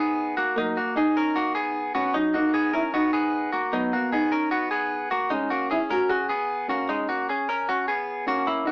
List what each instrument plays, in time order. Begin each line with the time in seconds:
Already playing: upright piano D#4, clean electric guitar G#4
0.00 clean electric guitar B3
0.37 clean electric guitar A#3 F#4
0.55 clean electric guitar F#3 D#4, upright piano A#3
0.77 clean electric guitar A#3 F#4
0.96 upright piano D#4, clean electric guitar D#4 G#4
1.17 clean electric guitar C#4 A#4
1.36 clean electric guitar A#3 F#4
1.55 clean electric guitar B3 G#4
1.95 clean electric guitar B3 F#4, upright piano C#4
2.14 clean electric guitar F#3 D#4, upright piano D#4
2.34 clean electric guitar A#3 F#4, upright piano D#4
2.54 clean electric guitar B3 G#4
2.73 clean electric guitar C#4 A#4, upright piano E4
2.94 clean electric guitar B3 F#4, upright piano D#4
3.13 clean electric guitar B3 G#4
3.52 clean electric guitar A#3 F#4
3.72 clean electric guitar F#3 D#4, upright piano B3
3.93 clean electric guitar A#3 F#4
4.12 clean electric guitar B3 G#4, upright piano D#4
4.32 clean electric guitar C#4 A#4
4.51 clean electric guitar B3 F#4
4.71 clean electric guitar B3 G#4
5.11 clean electric guitar A#3 F#4
5.30 clean electric guitar G#3 D#4, upright piano C#4
5.50 clean electric guitar A#3 F#4
5.71 clean electric guitar C#4 G#4, upright piano E4
5.90 clean electric guitar C#4 A#4, upright piano F#4
6.09 clean electric guitar C#4 F#4, upright piano G#4
6.29 clean electric guitar B3 G#4
6.68 clean electric guitar A#3 F#4, upright piano C#4
6.89 clean electric guitar G#3 D#4
7.09 clean electric guitar A#3 F#4
7.29 clean electric guitar C#4 G#4
7.49 clean electric guitar C#4 A#4
7.69 clean electric guitar C#4 F#4
7.88 clean electric guitar B3 G#4
8.27 clean electric guitar A#3 F#4, upright piano C#4
8.47 clean electric guitar A#3 E4
8.65 clean electric guitar A#3 F#4, upright piano D#4